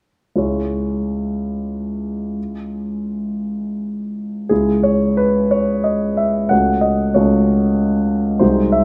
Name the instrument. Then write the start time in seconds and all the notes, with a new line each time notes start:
grand piano
0.36 C#2 G#3 E4 C#5
4.49 C#2 G#3 E4 G#4
4.83 C#5
5.17 B4
5.51 C#5
5.84 D#5
6.17 E5
6.49 C#2 A3 C#4 F#4 F#5
6.81 D#5
7.14 C#2 A3 C#4 F#4 C#5
8.39 C2 G#3 D#4 F#4 C5
8.72 E5